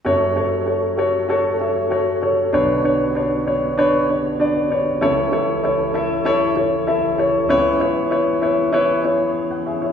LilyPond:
<<
  \new Staff \with { instrumentName = "Grand piano" } { \time 4/4 \key fis \minor \tempo 4 = 97 <fis' a' cis''>8 <fis' a' cis''>8 <fis' a' cis''>8 <fis' a' cis''>8 <fis' a' cis''>8 <fis' a' e''>8 <fis' a' cis''>8 <fis' a' cis''>8 | <d' b' cis''>8 <d' b' cis''>8 <d' b' cis''>8 <d' b' cis''>8 <d' b' cis''>8 <d' b' cis''>8 <d' b' d''>8 <d' b' cis''>8 | <e' a' cis''>8 <e' a' cis''>8 <e' a' cis''>8 <e' a' e''>8 <e' a' cis''>8 <e' a' cis''>8 <e' a' e''>8 <e' a' cis''>8 | <e' b' cis''>8 <e' b' cis''>8 <e' b' cis''>8 <e' b' cis''>8 <e' b' cis''>8 <e' b' cis''>8 r16 fis''16 <gis' e''>16 <e' cis''>16 | }
  \new Staff \with { instrumentName = "Grand piano" } { \clef bass \time 4/4 \key fis \minor <fis,, fis,>1 | <b,, b,>1 | <cis, cis>1 | <cis, cis>1 | }
  \new Staff \with { instrumentName = "Tonewheel organ" } { \time 4/4 \key fis \minor << { <fis cis''>1 | <d cis''>1 | <e cis''>1~ | <e cis''>1 | } \\ { cis'1~ | cis'1~ | cis'1~ | cis'1 | } >> }
  \new Staff \with { instrumentName = "Tonewheel organ" } { \time 4/4 \key fis \minor <a a'>1 | <b fis'>1 | <cis, a a'>1 | <b gis'>1 | }
>>